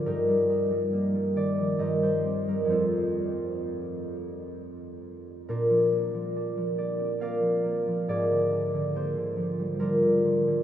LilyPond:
<<
  \new Staff \with { instrumentName = "Harp" } { \time 3/4 \key bes \major \tempo 4 = 68 << { bes'4. d''8 ees''16 c''8 bes'16 | c''2. | bes'4. d''8 f''4 | d''4 c''4 bes'4 | } \\ { <ees' g'>2 <bes' c''>4 | <f' a'>2. | <d' f'>2 <bes' d''>4 | <aes' bes'>2 <d' f'>4 | } >> }
  \new Staff \with { instrumentName = "Harp" } { \clef bass \time 3/4 \key bes \major <g, bes>16 g16 ees'16 g16 bes16 g16 ees16 f16 g,16 g16 c'16 g16 | <f, f a c'>2. | bes,16 f16 bes16 f16 d'16 f16 bes16 c'16 bes16 f16 bes16 f16 | aes,16 d16 d'16 d16 bes16 d16 f16 g16 f16 d16 f16 d16 | }
>>